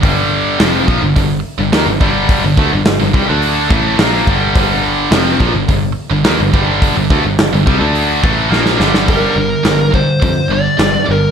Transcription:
<<
  \new Staff \with { instrumentName = "Lead electric guitar" } { \time 4/4 \key g \minor \tempo 4 = 106 r1 | r1 | r1 | r1 |
bes'4. c''4 d''4 bes'8 | }
  \new Staff \with { instrumentName = "Distorted electric guitar" } { \clef bass \time 4/4 \key g \minor <g, d g>4 <f, c f>8 <bes, f>16 <g, d>16 <g, d>8 r16 <g, d>16 <ees bes>16 <g, d>16 <g, d g>8~ | <g, d g>16 <g, d>16 <d a>16 <g, d>8 <g, d>16 <c g>16 <d a d'>8. <a, e a>8 <bes, f bes>8 <g, d g>8 | <g, d g>4 <f, c f>8 <bes, f>16 <g, d>16 <g, d>8 r16 <g, d>16 <ees bes>16 <g, d>16 <g, d g>8~ | <g, d g>16 <g, d>16 <d a>16 <g, d>8 <g, d>16 <c g>16 <d a d'>8. <a, e a>8 <bes, f bes>8 <g, d g>8 |
<g, d g>8 <g, d>8 <g, d>8 <g, d>8 <g, d>8 <g, d>8 <g, d>8 <g, d>8 | }
  \new Staff \with { instrumentName = "Distorted electric guitar" } { \clef bass \time 4/4 \key g \minor <g, d g>4 <f, c f>8 <bes, f>16 <g, d>16 <g, d>8 r16 <g, d>16 <ees bes>16 <g, d>16 <g, d g>8~ | <g, d g>16 <g, d>16 <d a>16 <g, d>8 <g, d>16 <c g>16 <d a d'>8. <a, e a>8 <bes, f bes>8 <g, d g>8 | <g, d g>4 <f, c f>8 <bes, f>16 <g, d>16 <g, d>8 r16 <g, d>16 <ees bes>16 <g, d>16 <g, d g>8~ | <g, d g>16 <g, d>16 <d a>16 <g, d>8 <g, d>16 <c g>16 <d a d'>8. <a, e a>8 <bes, f bes>8 <g, d g>8 |
<g, d g>8 <g, d>8 <g, d>8 <g, d>8 <g, d>8 <g, d>8 <g, d>8 <g, d>8 | }
  \new Staff \with { instrumentName = "Picked electric bass" } { \clef bass \time 4/4 \key g \minor g,,4 f,,8 bes,,16 g,,16 g,,8 r16 g,,16 ees,16 g,,16 g,,8~ | g,,16 g,,16 d,16 g,,8 g,,16 c,16 d,8. a,,8 bes,,8 g,,8 | g,,4 f,,8 bes,,16 g,,16 g,,8 r16 g,,16 ees,16 g,,16 g,,8~ | g,,16 g,,16 d,16 g,,8 g,,16 c,16 d,8. a,,8 bes,,8 g,,8 |
g,,8 g,,8 g,,4 f,8 g,,8 g,,8 g,,8 | }
  \new DrumStaff \with { instrumentName = "Drums" } \drummode { \time 4/4 <hho bd>4 <hho sn>8 bd8 <hho bd>4 <hho sn>8 bd8 | <hho bd>8 bd8 <hho sn>8 bd8 hho8 bd8 <hho sn>8 bd8 | <hho bd>4 <hho sn>8 bd8 <hho bd>4 <hho sn>8 bd8 | <hho bd>8 bd8 <hho sn>8 bd8 hho8 bd8 sn16 sn16 sn16 sn16 |
<hho bd>4 <hho sn>8 bd8 <hho bd>4 <hho sn>4 | }
>>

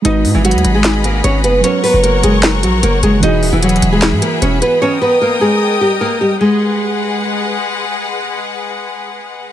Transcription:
<<
  \new Staff \with { instrumentName = "String section" } { \time 4/4 \key gis \minor \tempo 4 = 151 << { <gis' dis'' b''>1 | <ais' cis'' cis'''>1 | <gis' e'' b''>1 | <ais' dis'' dis'''>1 |
<gis gis' b' fis''>1~ | <gis gis' b' fis''>1 | } \\ { fis''1~ | fis''1~ | fis''1 | g''1 |
r1 | r1 | } >> }
  \new Staff \with { instrumentName = "Synth keys" } { \time 4/4 \key gis \minor <gis dis' fis' b'>1 | <fis fis' ais' cis''>1 | <e e' fis' gis'>1 | r1 |
r1 | r1 | }
  \new Staff \with { instrumentName = "Nylon-string guitar" } { \time 4/4 \key gis \minor <dis' dis''>8. <e e'>16 <fis fis'>8. <gis gis'>8. <ais ais'>8 <cis' cis''>8 <b b'>8 | <cis' cis''>8 <b b'>8 <ais ais'>8 <gis gis'>4 <fis fis'>8 <ais ais'>8 <gis gis'>8 | <dis' dis''>8. <e e'>16 <fis fis'>8. <gis gis'>8. <ais ais'>8 <cis' cis''>8 <b b'>8 | <cis' cis''>8 <b b'>8 <ais ais'>8 <gis gis'>4 <g g'>8 <ais ais'>8 <g g'>8 |
gis2. r4 | r1 | }
  \new Staff \with { instrumentName = "808-style bass" } { \clef bass \time 4/4 \key gis \minor gis,,8 gis,16 gis,,8 dis,16 gis,,4. gis,,8 fis,,8 | r8. fis,,8. fis,,4 ais,,8 fis,,8 fis,,8 | e,,8 dis,,16 e,,8. e,,8. gis,16 r8 e,,8 r8 | r1 |
r1 | r1 | }
  \new DrumStaff \with { instrumentName = "Drums" } \drummode { \time 4/4 hh8 hho8 \tuplet 3/2 { hh16 hh16 hh16 hh16 r16 r16 } <hc hh sn>8 hh8 hh8 hh8 | hh8 hho8 hh8 hh8 <hc hh sn>8 hh8 hh8 hh8 | hh8 hho8 \tuplet 3/2 { hh16 hh16 hh16 hh16 r16 r16 } <hc hh sn>8 hh8 hh8 hh8 | r4 r4 r4 r4 |
r4 r4 r4 r4 | r4 r4 r4 r4 | }
>>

